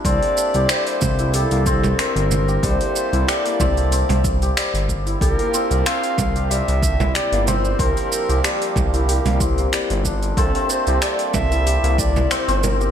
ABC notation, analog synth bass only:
X:1
M:4/4
L:1/16
Q:"Swing 16ths" 1/4=93
K:Cmix
V:1 name="Analog synth bass" clef=bass
C,, z2 C,, z2 C,,3 C,,3 z G,,,3 | C,, z2 C,, z2 C,,3 C,,3 z G,,,3 | C,, z2 C,, z2 C,,3 C,,3 z G,,,3 | C,, z2 C,, z2 C,,3 C,,3 z G,,,3 |
C,, z2 C,, z2 C,,3 C,,3 z G,,,3 |]